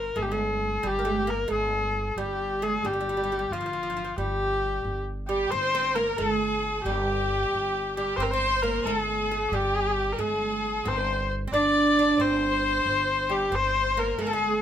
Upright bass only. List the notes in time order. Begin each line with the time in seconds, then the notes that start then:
Already playing: G1
0.16 G1
0.84 G1
1.50 G1
2.16 G1
2.83 G1
3.51 G1
4.18 G1
4.85 G1
5.52 G1
6.19 G1
6.85 G1
7.52 G1
8.18 G1
8.85 G1
9.52 G1
10.19 G1
10.86 G1
11.52 G1
12.18 G1
12.86 G1
13.52 G1
14.19 G1